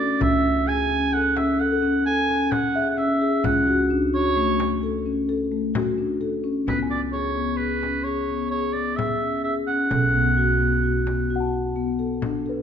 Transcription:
Already playing: upright bass C#2, oboe D5
0.20 upright bass C#2, marimba C#4, oboe E5, frame drum
0.67 marimba G#4, oboe G#5, frame drum
0.91 marimba C#4
1.13 marimba A4, oboe F#5
1.36 marimba C#4, oboe E5, frame drum
1.60 marimba A4, oboe F#5
1.72 celesta A4
1.83 marimba C#4, frame drum
2.06 marimba A4, oboe G#5
2.29 marimba C#4, frame drum
2.52 oboe F#5, frame drum
2.75 marimba G#4, celesta E5
2.90 oboe F#5
2.97 marimba C#4, oboe E5
3.21 marimba G#4
3.44 upright bass C#2, marimba C#4, oboe F#5, frame drum
3.67 marimba F#4, frame drum
3.90 marimba D4
4.14 marimba F#4, oboe C#5
4.36 marimba A3, frame drum
4.60 frame drum
4.83 marimba A4, frame drum
5.06 marimba C#4
5.29 marimba A4
5.52 marimba A3
5.74 marimba F#4, frame drum
5.98 marimba D4
6.21 marimba A4, frame drum
6.44 marimba C#4
6.67 upright bass C#2, marimba B3, oboe B4, frame drum
6.83 celesta G#5
6.90 oboe D5, frame drum
7.13 marimba G#4, oboe C#5
7.37 marimba B3
7.57 marimba G#4, oboe B4, frame drum
7.83 marimba C#4, frame drum
8.04 marimba G#4, oboe C#5
8.29 marimba B3, frame drum
8.50 marimba G#4, oboe C#5
8.73 marimba B3, oboe D5, frame drum
8.96 marimba G#4, oboe E5, frame drum
9.22 marimba C#4, frame drum
9.44 marimba G#4, oboe E5
9.67 marimba C#4, oboe F#5, frame drum
9.91 upright bass B1, marimba A4, frame drum
10.14 marimba B3, frame drum
10.37 marimba F#4
10.60 marimba B3
10.83 marimba F#4, frame drum
11.07 marimba B3, frame drum
11.30 marimba F#4
11.36 celesta F#5
11.40 celesta A5
11.54 frame drum
11.76 marimba B3
11.99 marimba A4, frame drum
12.22 marimba D4, frame drum
12.46 marimba A4, celesta B4, frame drum

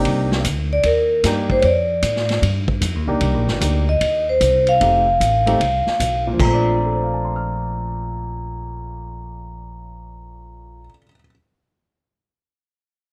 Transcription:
Already playing: grand piano C3 A#3 D4 D#4 G4
0.05 upright bass C2, kick, ride
0.32 snare
0.45 upright bass D2, kick, hi-hat pedal, ride
0.73 vibraphone D5
0.83 upright bass D#2, vibraphone A#4, kick, ride
1.23 upright bass G2, grand piano A#3 D4 D#4 G4, kick, snare, hi-hat pedal, ride
1.50 vibraphone C5, kick
1.60 upright bass F2, vibraphone C#5, kick, ride
1.66 vibraphone D5
2.02 upright bass A2, kick, hi-hat pedal, ride
2.16 snare
2.29 snare, ride
2.42 upright bass G2, kick, ride
2.68 kick
2.81 upright bass F2, kick, hi-hat pedal, ride
2.95 upright bass D#2
3.07 upright bass C2, grand piano A#3 D4 D#4 G4
3.21 upright bass C2, kick, ride
3.34 upright bass A#1
3.47 upright bass G1, snare
3.61 upright bass D2, grand piano A#3 D4 D#4 G4, kick, hi-hat pedal, ride
3.89 vibraphone D#5
4.01 upright bass D#2, kick, ride
4.29 vibraphone C5
4.41 upright bass C2, kick, hi-hat pedal, ride
4.67 vibraphone F5, ride
4.81 upright bass F1, grand piano A3 C4 D#4 G4, kick, ride
5.20 upright bass A1, kick, hi-hat pedal, ride
5.46 grand piano A3 C4 D#4 G4, ride
5.60 upright bass C2, kick, ride
5.87 muted upright bass stroke, snare
6.00 upright bass B1, kick, hi-hat pedal, ride
6.27 grand piano A#2
6.33 grand piano F3
6.39 upright bass A#1, grand piano A3, vibraphone A#5, kick, splash
6.47 grand piano C4
6.53 grand piano D4
6.79 grand piano F4
6.86 grand piano A4
6.95 grand piano C5
7.04 grand piano F5
7.14 grand piano A5
7.25 grand piano C6
7.36 grand piano F6

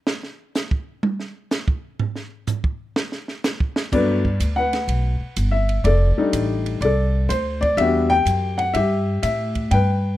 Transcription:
0.07 snare
0.23 snare
0.55 snare, hi-hat pedal
0.71 kick
1.03 high tom
1.20 snare
1.51 snare, hi-hat pedal
1.68 kick
1.99 floor tom
2.16 snare
2.47 floor tom, hi-hat pedal
2.64 kick
2.96 snare
3.12 snare
3.28 snare
3.44 snare, hi-hat pedal
3.60 kick
3.76 snare
3.92 upright bass G2, upright piano F#3 A3 B3 D4 B4 D5, kick, crash
4.25 kick
4.40 upright bass D2, hi-hat pedal, ride
4.56 upright piano B4 F#5
4.73 snare, ride
4.88 upright bass B1, ride
5.20 muted upright bass stroke
5.36 upright bass G1, hi-hat pedal, ride
5.51 upright piano E5
5.69 ride
5.84 upright bass F1, upright piano A4 D5, ride
6.17 upright piano G3 A3 D4 D#4, muted upright bass stroke
6.33 upright bass A1, hi-hat pedal, ride
6.66 ride
6.81 upright bass C2, upright piano A4 D5, ride
7.29 upright bass D2, upright piano C5, hi-hat pedal, ride
7.61 upright piano D5, kick, ride
7.77 upright bass E2, upright piano G3 B3 D4 F#4 G4 E5, ride
8.10 upright piano G5
8.25 upright bass F#2, hi-hat pedal, ride
8.58 upright piano F#5, ride
8.74 upright bass G2, upright piano G4 E5, ride
9.23 upright bass A2, upright piano E5, hi-hat pedal, ride
9.55 kick, ride
9.71 upright bass G2, upright piano B4 G5, ride

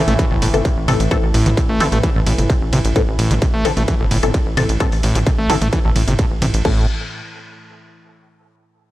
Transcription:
Already playing: synth drone A2 E3
0.08 analog synth bass A1, acid bass A3, closed hi-hat, mid tom
0.19 acid bass E3, kick, closed hi-hat, ride
0.31 analog synth bass G1, acid bass A1
0.42 analog synth bass G1, acid bass A2, open hi-hat, ride
0.54 analog synth bass G1, synth stab E3 C4 A4, closed hi-hat, mid tom
0.65 acid bass C3, kick, closed hi-hat, ride
0.77 analog synth bass A1
0.88 analog synth bass A1, acid bass C3, synth stab E3 C4 A4, mid tom, open hi-hat, ride
1.00 analog synth bass A1, closed hi-hat
1.11 acid bass A2, synth stab E3 C4 A4, kick, closed hi-hat, ride
1.23 analog synth bass A1
1.34 analog synth bass A1, acid bass A2, open hi-hat, ride
1.46 analog synth bass A1, acid bass A3, closed hi-hat, mid tom
1.57 acid bass C3, kick, closed hi-hat, ride
1.69 analog synth bass A1, acid bass A3
1.80 analog synth bass A1, acid bass C3, synth stab E3 C4 A4, open hi-hat, ride
1.92 analog synth bass A1, acid bass A3, closed hi-hat, mid tom
2.03 acid bass E3, kick, closed hi-hat, ride
2.15 acid bass A1, analog synth bass A1
2.26 analog synth bass A1, acid bass A2, open hi-hat, ride
2.38 analog synth bass G1, closed hi-hat, mid tom
2.49 acid bass C3, kick, closed hi-hat, ride
2.62 analog synth bass A1
2.73 analog synth bass A1, acid bass C3, mid tom, open hi-hat, ride
2.85 analog synth bass A1, closed hi-hat
2.96 acid bass A2, synth stab E3 C4 A4, kick, closed hi-hat, ride
3.08 analog synth bass A1
3.19 analog synth bass A1, acid bass A2, open hi-hat, ride
3.31 analog synth bass A1, acid bass A3, closed hi-hat, mid tom
3.42 acid bass C3, kick, closed hi-hat, ride
3.54 analog synth bass A1, acid bass A3
3.65 analog synth bass A1, acid bass C3, synth stab E3 C4 A4, open hi-hat, ride
3.77 analog synth bass A1, acid bass A3, closed hi-hat, mid tom
3.88 acid bass E3, kick, closed hi-hat, ride
4.00 analog synth bass G1, acid bass A1
4.11 analog synth bass G1, acid bass A2, open hi-hat, ride
4.23 analog synth bass G1, synth stab E3 C4 A4, closed hi-hat, mid tom
4.34 acid bass C3, kick, closed hi-hat, ride
4.46 analog synth bass A1
4.57 analog synth bass A1, acid bass C3, synth stab E3 C4 A4, mid tom, open hi-hat, ride
4.69 analog synth bass A1, closed hi-hat
4.80 acid bass A2, synth stab E3 C4 A4, kick, closed hi-hat, ride
4.92 analog synth bass A1, open hi-hat
5.03 analog synth bass A1, acid bass A2, open hi-hat, ride
5.15 analog synth bass A1, acid bass A3, closed hi-hat, mid tom
5.27 acid bass C3, kick, closed hi-hat, ride
5.38 analog synth bass A1, acid bass A3
5.50 analog synth bass A1, acid bass C3, synth stab E3 C4 A4, open hi-hat, ride
5.61 analog synth bass A1, acid bass A3, closed hi-hat, mid tom
5.73 acid bass E3, kick, closed hi-hat, ride
5.85 analog synth bass A1, acid bass A1
5.96 analog synth bass A1, acid bass A2, mid tom, open hi-hat, ride
6.08 analog synth bass G1, acid bass C3, closed hi-hat, mid tom
6.19 acid bass A2, kick, closed hi-hat, ride
6.31 analog synth bass A1
6.42 analog synth bass A1, acid bass C3, mid tom, open hi-hat, ride
6.54 analog synth bass A1, closed hi-hat
6.65 analog synth bass A1, acid bass A2, synth stab E3 C4 A4, kick, crash

